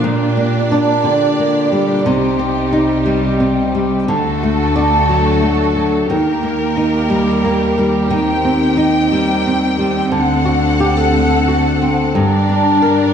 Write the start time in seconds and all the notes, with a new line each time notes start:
Already playing: A#2 D3 F3 A#3 D4
0.03 A#2 G4 D5
0.37 A#3
0.72 D4
1.04 D3
1.39 A#3
1.72 G3
2.06 C2 C3 G3 D#4
2.39 C4
2.73 D#4
3.06 G3
3.40 C4
3.75 G3
4.08 D2 D3 A3 F#4 A4
4.43 A3
4.76 D4
5.09 F#3
5.42 A3
5.76 F#3
6.07 D#2 D#3 A#3 G4 A#4
6.43 A#3
6.77 D#4
7.10 G3
7.45 A#3
7.78 G3
8.09 D#3 C4 G5
8.45 C4
8.77 D#4
9.12 G3
9.46 C4
9.79 G3
10.12 D2 D3 A4 F#5
10.45 F#4
10.80 G4
10.97 A4
11.14 A3
11.48 F#4
11.82 C4
12.14 G2 G3 D4 A#4 D5
12.49 D4
12.82 A#4